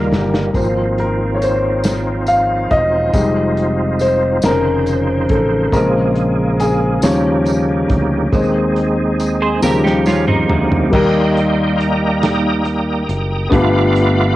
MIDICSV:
0, 0, Header, 1, 6, 480
1, 0, Start_track
1, 0, Tempo, 864553
1, 301, Time_signature, 6, 3, 24, 8
1, 7972, End_track
2, 0, Start_track
2, 0, Title_t, "Clean electric guitar"
2, 0, Program_c, 0, 27
2, 5230, Note_on_c, 0, 68, 75
2, 5231, Note_on_c, 0, 72, 66
2, 5341, Note_off_c, 0, 72, 0
2, 5342, Note_off_c, 0, 68, 0
2, 5347, Note_on_c, 0, 70, 82
2, 5351, Note_on_c, 0, 67, 67
2, 5455, Note_off_c, 0, 67, 0
2, 5460, Note_off_c, 0, 70, 0
2, 5462, Note_on_c, 0, 67, 78
2, 5464, Note_on_c, 0, 63, 75
2, 5577, Note_off_c, 0, 67, 0
2, 5578, Note_off_c, 0, 63, 0
2, 5588, Note_on_c, 0, 61, 74
2, 5592, Note_on_c, 0, 65, 80
2, 5701, Note_off_c, 0, 61, 0
2, 5701, Note_off_c, 0, 65, 0
2, 5705, Note_on_c, 0, 60, 68
2, 5706, Note_on_c, 0, 63, 73
2, 6047, Note_off_c, 0, 60, 0
2, 6047, Note_off_c, 0, 63, 0
2, 7972, End_track
3, 0, Start_track
3, 0, Title_t, "Tonewheel organ"
3, 0, Program_c, 1, 16
3, 0, Note_on_c, 1, 51, 59
3, 0, Note_on_c, 1, 55, 55
3, 0, Note_on_c, 1, 58, 65
3, 279, Note_off_c, 1, 51, 0
3, 281, Note_off_c, 1, 55, 0
3, 282, Note_off_c, 1, 58, 0
3, 305, Note_on_c, 1, 60, 52
3, 305, Note_on_c, 1, 65, 57
3, 306, Note_on_c, 1, 63, 53
3, 311, Note_on_c, 1, 53, 61
3, 1728, Note_off_c, 1, 60, 0
3, 1731, Note_off_c, 1, 53, 0
3, 1738, Note_on_c, 1, 60, 52
3, 1739, Note_on_c, 1, 53, 60
3, 2441, Note_off_c, 1, 65, 0
3, 2442, Note_off_c, 1, 63, 0
3, 2453, Note_off_c, 1, 60, 0
3, 2460, Note_on_c, 1, 72, 76
3, 2461, Note_on_c, 1, 49, 64
3, 2463, Note_on_c, 1, 63, 64
3, 3172, Note_on_c, 1, 58, 59
3, 3174, Note_off_c, 1, 72, 0
3, 3175, Note_off_c, 1, 63, 0
3, 3178, Note_on_c, 1, 68, 73
3, 3880, Note_off_c, 1, 53, 0
3, 3894, Note_off_c, 1, 68, 0
3, 3904, Note_on_c, 1, 67, 82
3, 3909, Note_on_c, 1, 63, 65
3, 4602, Note_off_c, 1, 49, 0
3, 4604, Note_off_c, 1, 58, 0
3, 4617, Note_off_c, 1, 67, 0
3, 4618, Note_on_c, 1, 60, 62
3, 4621, Note_on_c, 1, 56, 66
3, 4622, Note_on_c, 1, 68, 79
3, 5334, Note_off_c, 1, 60, 0
3, 5336, Note_off_c, 1, 56, 0
3, 5336, Note_off_c, 1, 68, 0
3, 5352, Note_on_c, 1, 49, 61
3, 5353, Note_on_c, 1, 67, 80
3, 5354, Note_on_c, 1, 58, 65
3, 6046, Note_off_c, 1, 63, 0
3, 6061, Note_off_c, 1, 49, 0
3, 6062, Note_off_c, 1, 67, 0
3, 6063, Note_off_c, 1, 58, 0
3, 6069, Note_on_c, 1, 84, 93
3, 6072, Note_on_c, 1, 55, 52
3, 6072, Note_on_c, 1, 58, 53
3, 6076, Note_on_c, 1, 75, 70
3, 6077, Note_on_c, 1, 79, 71
3, 6079, Note_on_c, 1, 63, 58
3, 6528, Note_on_c, 1, 82, 100
3, 6561, Note_off_c, 1, 84, 0
3, 6769, Note_off_c, 1, 75, 0
3, 6769, Note_off_c, 1, 79, 0
3, 6784, Note_off_c, 1, 82, 0
3, 6784, Note_on_c, 1, 87, 115
3, 6794, Note_on_c, 1, 79, 77
3, 6795, Note_on_c, 1, 82, 85
3, 7016, Note_off_c, 1, 58, 0
3, 7018, Note_off_c, 1, 63, 0
3, 7021, Note_off_c, 1, 55, 0
3, 7023, Note_on_c, 1, 58, 44
3, 7025, Note_on_c, 1, 63, 59
3, 7027, Note_on_c, 1, 55, 52
3, 7242, Note_off_c, 1, 58, 0
3, 7243, Note_off_c, 1, 63, 0
3, 7244, Note_off_c, 1, 55, 0
3, 7488, Note_off_c, 1, 79, 0
3, 7488, Note_off_c, 1, 82, 0
3, 7499, Note_on_c, 1, 86, 118
3, 7505, Note_on_c, 1, 57, 57
3, 7508, Note_on_c, 1, 59, 49
3, 7512, Note_on_c, 1, 77, 75
3, 7513, Note_on_c, 1, 83, 84
3, 7514, Note_on_c, 1, 65, 69
3, 7526, Note_off_c, 1, 87, 0
3, 7968, Note_off_c, 1, 86, 0
3, 7972, Note_off_c, 1, 57, 0
3, 7972, Note_off_c, 1, 59, 0
3, 7972, Note_off_c, 1, 65, 0
3, 7972, Note_off_c, 1, 77, 0
3, 7972, Note_off_c, 1, 83, 0
3, 7972, End_track
4, 0, Start_track
4, 0, Title_t, "Grand piano"
4, 0, Program_c, 2, 0
4, 0, Control_c, 2, 64, 127
4, 0, Note_on_c, 2, 51, 78
4, 0, Note_on_c, 2, 55, 86
4, 0, Note_on_c, 2, 58, 69
4, 0, Note_on_c, 2, 63, 77
4, 0, Note_on_c, 2, 67, 74
4, 0, Note_on_c, 2, 70, 92
4, 276, Note_off_c, 2, 51, 0
4, 291, Note_off_c, 2, 58, 0
4, 295, Note_on_c, 2, 53, 48
4, 296, Note_off_c, 2, 55, 0
4, 299, Note_off_c, 2, 63, 0
4, 299, Note_on_c, 2, 58, 43
4, 304, Note_off_c, 2, 70, 0
4, 304, Note_on_c, 2, 60, 55
4, 308, Control_c, 2, 64, 0
4, 320, Note_off_c, 2, 67, 0
4, 407, Control_c, 2, 64, 127
4, 553, Note_on_c, 2, 70, 79
4, 735, Note_off_c, 2, 70, 0
4, 746, Note_on_c, 2, 73, 59
4, 783, Note_off_c, 2, 73, 0
4, 796, Note_on_c, 2, 72, 82
4, 1265, Note_on_c, 2, 77, 89
4, 1283, Note_off_c, 2, 72, 0
4, 1486, Note_off_c, 2, 77, 0
4, 1503, Note_on_c, 2, 75, 94
4, 1715, Note_off_c, 2, 53, 0
4, 1717, Note_off_c, 2, 58, 0
4, 1720, Note_off_c, 2, 60, 0
4, 1744, Note_on_c, 2, 55, 51
4, 1745, Note_on_c, 2, 56, 52
4, 1746, Note_on_c, 2, 63, 61
4, 1749, Control_c, 2, 64, 0
4, 1848, Control_c, 2, 64, 127
4, 2227, Note_on_c, 2, 72, 84
4, 2244, Note_off_c, 2, 75, 0
4, 2440, Note_off_c, 2, 55, 0
4, 2441, Note_off_c, 2, 56, 0
4, 2442, Note_off_c, 2, 63, 0
4, 2466, Note_on_c, 2, 51, 57
4, 2468, Note_on_c, 2, 60, 52
4, 2469, Control_c, 2, 64, 0
4, 2470, Note_on_c, 2, 61, 59
4, 2471, Note_off_c, 2, 72, 0
4, 2472, Note_on_c, 2, 70, 94
4, 2562, Control_c, 2, 64, 127
4, 2946, Note_on_c, 2, 69, 77
4, 2961, Note_off_c, 2, 70, 0
4, 3162, Note_off_c, 2, 51, 0
4, 3163, Note_off_c, 2, 60, 0
4, 3164, Note_off_c, 2, 61, 0
4, 3167, Note_off_c, 2, 69, 0
4, 3178, Note_on_c, 2, 49, 55
4, 3180, Note_on_c, 2, 56, 52
4, 3182, Note_on_c, 2, 70, 85
4, 3187, Note_on_c, 2, 60, 63
4, 3188, Control_c, 2, 64, 0
4, 3300, Control_c, 2, 64, 127
4, 3665, Note_on_c, 2, 68, 84
4, 3677, Note_off_c, 2, 70, 0
4, 3878, Note_off_c, 2, 49, 0
4, 3880, Note_off_c, 2, 56, 0
4, 3883, Note_off_c, 2, 60, 0
4, 3900, Note_on_c, 2, 53, 61
4, 3903, Note_on_c, 2, 55, 53
4, 3903, Note_on_c, 2, 73, 76
4, 3907, Note_on_c, 2, 61, 65
4, 3911, Note_off_c, 2, 68, 0
4, 3911, Control_c, 2, 64, 0
4, 3995, Control_c, 2, 64, 127
4, 4126, Note_off_c, 2, 73, 0
4, 4600, Note_off_c, 2, 53, 0
4, 4601, Note_off_c, 2, 55, 0
4, 4603, Note_off_c, 2, 61, 0
4, 4621, Note_on_c, 2, 51, 60
4, 4622, Note_on_c, 2, 56, 53
4, 4628, Note_on_c, 2, 60, 67
4, 4631, Control_c, 2, 64, 0
4, 4717, Control_c, 2, 64, 127
4, 4942, Note_off_c, 2, 51, 0
4, 4942, Note_off_c, 2, 56, 0
4, 4946, Note_off_c, 2, 60, 0
4, 5342, Note_on_c, 2, 53, 60
4, 5343, Note_on_c, 2, 55, 57
4, 5349, Note_on_c, 2, 49, 70
4, 5352, Control_c, 2, 64, 0
4, 5457, Control_c, 2, 64, 127
4, 6040, Note_off_c, 2, 55, 0
4, 6042, Note_off_c, 2, 53, 0
4, 6045, Note_off_c, 2, 49, 0
4, 6049, Note_on_c, 2, 55, 64
4, 6059, Note_on_c, 2, 58, 65
4, 6064, Note_on_c, 2, 51, 64
4, 6066, Note_on_c, 2, 63, 68
4, 6070, Note_on_c, 2, 67, 66
4, 6072, Control_c, 2, 64, 0
4, 6079, Note_on_c, 2, 70, 83
4, 6163, Control_c, 2, 64, 127
4, 6763, Note_off_c, 2, 51, 0
4, 7475, Note_off_c, 2, 55, 0
4, 7480, Note_off_c, 2, 58, 0
4, 7484, Note_off_c, 2, 63, 0
4, 7486, Note_off_c, 2, 67, 0
4, 7490, Note_off_c, 2, 70, 0
4, 7492, Note_on_c, 2, 59, 67
4, 7499, Note_on_c, 2, 62, 72
4, 7504, Note_on_c, 2, 43, 74
4, 7506, Note_on_c, 2, 65, 64
4, 7514, Control_c, 2, 64, 0
4, 7514, Note_on_c, 2, 67, 63
4, 7521, Note_on_c, 2, 71, 87
4, 7613, Control_c, 2, 64, 127
4, 7972, Note_off_c, 2, 43, 0
4, 7972, Note_off_c, 2, 59, 0
4, 7972, Note_off_c, 2, 62, 0
4, 7972, Note_off_c, 2, 65, 0
4, 7972, Note_off_c, 2, 67, 0
4, 7972, Note_off_c, 2, 71, 0
4, 7972, End_track
5, 0, Start_track
5, 0, Title_t, "Fingered electric bass"
5, 0, Program_c, 3, 33
5, 0, Note_on_c, 3, 39, 93
5, 63, Note_on_c, 3, 31, 88
5, 72, Note_off_c, 3, 39, 0
5, 283, Note_off_c, 3, 31, 0
5, 302, Note_on_c, 3, 32, 84
5, 1479, Note_off_c, 3, 32, 0
5, 1505, Note_on_c, 3, 28, 84
5, 1724, Note_off_c, 3, 28, 0
5, 1740, Note_on_c, 3, 29, 100
5, 2439, Note_off_c, 3, 29, 0
5, 2462, Note_on_c, 3, 29, 95
5, 2920, Note_off_c, 3, 29, 0
5, 2943, Note_on_c, 3, 33, 83
5, 3163, Note_off_c, 3, 33, 0
5, 3179, Note_on_c, 3, 34, 109
5, 3879, Note_off_c, 3, 34, 0
5, 3904, Note_on_c, 3, 39, 99
5, 4361, Note_off_c, 3, 39, 0
5, 4386, Note_on_c, 3, 38, 83
5, 4606, Note_off_c, 3, 38, 0
5, 4624, Note_on_c, 3, 39, 103
5, 5322, Note_off_c, 3, 39, 0
5, 5350, Note_on_c, 3, 39, 98
5, 5805, Note_off_c, 3, 39, 0
5, 5827, Note_on_c, 3, 38, 94
5, 6047, Note_off_c, 3, 38, 0
5, 6070, Note_on_c, 3, 39, 118
5, 7246, Note_off_c, 3, 39, 0
5, 7267, Note_on_c, 3, 30, 98
5, 7487, Note_off_c, 3, 30, 0
5, 7507, Note_on_c, 3, 31, 118
5, 7972, Note_off_c, 3, 31, 0
5, 7972, End_track
6, 0, Start_track
6, 0, Title_t, "Drums"
6, 69, Note_on_c, 9, 38, 97
6, 124, Note_off_c, 9, 38, 0
6, 188, Note_on_c, 9, 38, 100
6, 244, Note_off_c, 9, 38, 0
6, 301, Note_on_c, 9, 36, 85
6, 302, Note_on_c, 9, 42, 72
6, 302, Note_on_c, 9, 54, 49
6, 357, Note_off_c, 9, 36, 0
6, 357, Note_off_c, 9, 42, 0
6, 358, Note_off_c, 9, 54, 0
6, 545, Note_on_c, 9, 42, 35
6, 601, Note_off_c, 9, 42, 0
6, 787, Note_on_c, 9, 42, 57
6, 787, Note_on_c, 9, 54, 46
6, 842, Note_off_c, 9, 42, 0
6, 842, Note_off_c, 9, 54, 0
6, 1019, Note_on_c, 9, 54, 77
6, 1024, Note_on_c, 9, 42, 80
6, 1026, Note_on_c, 9, 38, 96
6, 1075, Note_off_c, 9, 54, 0
6, 1079, Note_off_c, 9, 42, 0
6, 1082, Note_off_c, 9, 38, 0
6, 1257, Note_on_c, 9, 54, 47
6, 1259, Note_on_c, 9, 42, 41
6, 1312, Note_off_c, 9, 54, 0
6, 1315, Note_off_c, 9, 42, 0
6, 1501, Note_on_c, 9, 42, 64
6, 1503, Note_on_c, 9, 36, 79
6, 1557, Note_off_c, 9, 42, 0
6, 1559, Note_off_c, 9, 36, 0
6, 1740, Note_on_c, 9, 36, 104
6, 1740, Note_on_c, 9, 54, 49
6, 1741, Note_on_c, 9, 42, 75
6, 1796, Note_off_c, 9, 36, 0
6, 1796, Note_off_c, 9, 42, 0
6, 1796, Note_off_c, 9, 54, 0
6, 1983, Note_on_c, 9, 42, 44
6, 2039, Note_off_c, 9, 42, 0
6, 2217, Note_on_c, 9, 54, 46
6, 2225, Note_on_c, 9, 42, 58
6, 2273, Note_off_c, 9, 54, 0
6, 2280, Note_off_c, 9, 42, 0
6, 2453, Note_on_c, 9, 54, 79
6, 2461, Note_on_c, 9, 42, 81
6, 2464, Note_on_c, 9, 38, 113
6, 2509, Note_off_c, 9, 54, 0
6, 2516, Note_off_c, 9, 42, 0
6, 2519, Note_off_c, 9, 38, 0
6, 2700, Note_on_c, 9, 42, 40
6, 2702, Note_on_c, 9, 54, 42
6, 2755, Note_off_c, 9, 42, 0
6, 2758, Note_off_c, 9, 54, 0
6, 2939, Note_on_c, 9, 42, 64
6, 2942, Note_on_c, 9, 36, 90
6, 2994, Note_off_c, 9, 42, 0
6, 2998, Note_off_c, 9, 36, 0
6, 3179, Note_on_c, 9, 36, 93
6, 3180, Note_on_c, 9, 42, 81
6, 3184, Note_on_c, 9, 54, 55
6, 3234, Note_off_c, 9, 36, 0
6, 3235, Note_off_c, 9, 42, 0
6, 3239, Note_off_c, 9, 54, 0
6, 3418, Note_on_c, 9, 42, 40
6, 3474, Note_off_c, 9, 42, 0
6, 3664, Note_on_c, 9, 42, 65
6, 3666, Note_on_c, 9, 54, 48
6, 3719, Note_off_c, 9, 42, 0
6, 3721, Note_off_c, 9, 54, 0
6, 3897, Note_on_c, 9, 54, 74
6, 3904, Note_on_c, 9, 42, 89
6, 3906, Note_on_c, 9, 38, 106
6, 3953, Note_off_c, 9, 54, 0
6, 3959, Note_off_c, 9, 42, 0
6, 3962, Note_off_c, 9, 38, 0
6, 4139, Note_on_c, 9, 42, 40
6, 4144, Note_on_c, 9, 54, 51
6, 4195, Note_off_c, 9, 42, 0
6, 4199, Note_off_c, 9, 54, 0
6, 4383, Note_on_c, 9, 42, 68
6, 4386, Note_on_c, 9, 36, 84
6, 4439, Note_off_c, 9, 42, 0
6, 4441, Note_off_c, 9, 36, 0
6, 4623, Note_on_c, 9, 36, 110
6, 4623, Note_on_c, 9, 42, 75
6, 4627, Note_on_c, 9, 54, 55
6, 4678, Note_off_c, 9, 42, 0
6, 4679, Note_off_c, 9, 36, 0
6, 4683, Note_off_c, 9, 54, 0
6, 4865, Note_on_c, 9, 42, 46
6, 4921, Note_off_c, 9, 42, 0
6, 5107, Note_on_c, 9, 54, 53
6, 5109, Note_on_c, 9, 42, 64
6, 5162, Note_off_c, 9, 54, 0
6, 5165, Note_off_c, 9, 42, 0
6, 5344, Note_on_c, 9, 54, 81
6, 5351, Note_on_c, 9, 38, 58
6, 5399, Note_off_c, 9, 54, 0
6, 5407, Note_off_c, 9, 38, 0
6, 5473, Note_on_c, 9, 38, 59
6, 5529, Note_off_c, 9, 38, 0
6, 5584, Note_on_c, 9, 54, 49
6, 5593, Note_on_c, 9, 38, 71
6, 5639, Note_off_c, 9, 54, 0
6, 5649, Note_off_c, 9, 38, 0
6, 5708, Note_on_c, 9, 45, 66
6, 5764, Note_off_c, 9, 45, 0
6, 5828, Note_on_c, 9, 43, 98
6, 5883, Note_off_c, 9, 43, 0
6, 5951, Note_on_c, 9, 43, 96
6, 6007, Note_off_c, 9, 43, 0
6, 6069, Note_on_c, 9, 36, 114
6, 6069, Note_on_c, 9, 49, 96
6, 6124, Note_off_c, 9, 36, 0
6, 6124, Note_off_c, 9, 49, 0
6, 6313, Note_on_c, 9, 42, 43
6, 6369, Note_off_c, 9, 42, 0
6, 6554, Note_on_c, 9, 42, 48
6, 6610, Note_off_c, 9, 42, 0
6, 6790, Note_on_c, 9, 42, 100
6, 6792, Note_on_c, 9, 38, 121
6, 6845, Note_off_c, 9, 42, 0
6, 6848, Note_off_c, 9, 38, 0
6, 7023, Note_on_c, 9, 42, 43
6, 7079, Note_off_c, 9, 42, 0
6, 7268, Note_on_c, 9, 42, 57
6, 7324, Note_off_c, 9, 42, 0
6, 7506, Note_on_c, 9, 36, 113
6, 7507, Note_on_c, 9, 42, 89
6, 7561, Note_off_c, 9, 36, 0
6, 7562, Note_off_c, 9, 42, 0
6, 7749, Note_on_c, 9, 42, 51
6, 7805, Note_off_c, 9, 42, 0
6, 7972, End_track
0, 0, End_of_file